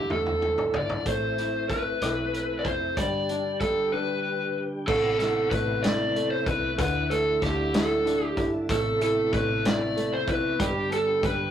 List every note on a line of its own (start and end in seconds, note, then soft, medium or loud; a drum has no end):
0.00 1.02 D3 medium
0.00 1.04 D3 medium
0.00 1.04 E3 medium
0.00 0.10 A3 soft
0.00 2.93 A3 soft
0.00 1.02 E4 soft
0.00 1.03 E4 medium
0.00 0.11 G4 medium
0.10 0.76 E2 medium
0.10 1.03 A3 medium
0.10 0.77 A4 medium
0.10 mid tom medium
0.26 mid tom medium
0.42 mid tom medium
0.58 floor tom medium
0.74 1.04 G1 medium
0.74 1.08 D5 medium
0.74 floor tom medium
0.90 floor tom medium
1.06 1.97 A1 medium
1.06 2.93 A3 medium
1.06 2.96 C4 medium
1.06 2.96 E4 medium
1.06 1.70 C5 medium
1.06 kick loud
1.06 closed hi-hat medium
1.38 2.01 E4 soft
1.38 cross-stick soft
1.38 closed hi-hat soft
1.70 2.94 A4 medium
1.70 2.61 B4 medium
1.70 kick medium
1.70 closed hi-hat soft
2.01 2.61 B1 medium
2.01 2.94 E4 medium
2.01 cross-stick medium
2.01 closed hi-hat medium
2.34 closed hi-hat soft
2.59 2.65 D5 medium
2.65 2.95 F1 medium
2.65 2.98 C5 medium
2.65 kick medium
2.65 closed hi-hat soft
2.97 3.89 G1 medium
2.97 4.86 D3 medium
2.97 4.86 G3 medium
2.97 3.60 G3 medium
2.97 4.86 G4 medium
2.97 3.57 D5 medium
2.97 kick loud
2.97 closed hi-hat medium
3.29 3.92 D4 medium
3.29 closed hi-hat soft
3.61 4.85 G3 medium
3.61 3.93 A4 medium
3.61 kick medium
3.61 closed hi-hat medium
3.92 4.86 D4 medium
3.92 4.60 B4 medium
4.87 5.48 A1 medium
4.87 6.77 C3 medium
4.87 5.50 A3 medium
4.87 10.56 A3 medium
4.87 6.77 B3 medium
4.87 10.56 E4 medium
4.87 5.18 A4 medium
4.87 kick loud
4.87 crash loud
5.20 5.82 E4 soft
5.20 5.50 A4 medium
5.20 snare soft
5.20 closed hi-hat soft
5.51 6.43 A1 medium
5.51 6.14 A3 medium
5.51 5.84 B4 medium
5.51 kick medium
5.51 closed hi-hat medium
5.83 6.45 E4 medium
5.83 6.30 D5 loud
5.83 snare medium
5.83 closed hi-hat medium
6.15 6.77 A3 medium
6.15 closed hi-hat soft
6.31 6.46 C5 medium
6.46 6.76 C2 medium
6.46 6.77 E4 medium
6.46 6.78 B4 medium
6.46 kick medium
6.46 closed hi-hat medium
6.78 7.38 D2 loud
6.78 8.65 D3 medium
6.78 8.68 D3 medium
6.78 8.68 E3 medium
6.78 7.11 B4 loud
6.78 kick loud
6.78 closed hi-hat medium
7.10 8.33 A3 medium
7.10 7.43 A4 medium
7.10 closed hi-hat soft
7.42 8.33 D2 medium
7.42 8.04 D4 medium
7.42 7.75 G4 medium
7.42 kick medium
7.42 snare soft
7.42 closed hi-hat medium
7.74 8.36 E4 medium
7.74 8.25 A4 loud
7.74 snare loud
7.74 closed hi-hat medium
8.06 8.67 D4 medium
8.06 closed hi-hat soft
8.25 8.42 G4 loud
8.37 8.67 G1 medium
8.37 8.68 E4 medium
8.37 kick medium
8.37 closed hi-hat soft
8.69 9.29 A1 loud
8.69 10.58 C3 medium
8.69 9.31 A3 medium
8.69 11.51 B3 medium
8.69 9.01 A4 loud
8.69 kick loud
8.69 closed hi-hat medium
9.01 9.64 E4 medium
9.01 9.33 A4 medium
9.01 closed hi-hat soft
9.33 10.27 A1 loud
9.33 9.95 A3 medium
9.33 9.66 B4 loud
9.33 kick loud
9.33 closed hi-hat medium
9.65 10.26 E4 medium
9.65 10.14 D5 loud
9.65 snare loud
9.65 closed hi-hat loud
9.96 10.58 A3 medium
9.96 closed hi-hat soft
10.14 10.29 C5 medium
10.27 10.57 F1 medium
10.27 10.58 E4 medium
10.27 10.61 B4 medium
10.27 kick medium
10.27 closed hi-hat soft
10.59 11.19 G1 loud
10.59 11.51 D3 medium
10.59 11.22 G3 medium
10.59 11.51 G3 medium
10.59 11.51 G4 medium
10.59 10.93 G4 medium
10.59 kick loud
10.59 closed hi-hat medium
10.90 11.51 D4 soft
10.90 11.25 A4 medium
10.90 closed hi-hat soft
11.23 11.51 G1 medium
11.23 11.51 G3 medium
11.23 11.51 B4 medium
11.23 kick medium
11.23 closed hi-hat medium